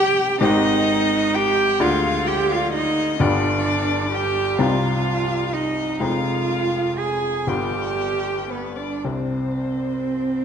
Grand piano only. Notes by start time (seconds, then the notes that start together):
Already playing: C2 C3 C4 D#4 G4
0.41 G#1 G#2 C4 D#4 G4
1.80 D2 D3 G#3 D4 F4
3.20 G1 G2 G3 B3 F4
4.58 C2 C3 G3 C4 D#4
6.00 F1 F2 G#3 C4 D#4
7.47 G1 G2 G3 B3 F4
9.04 C2 C3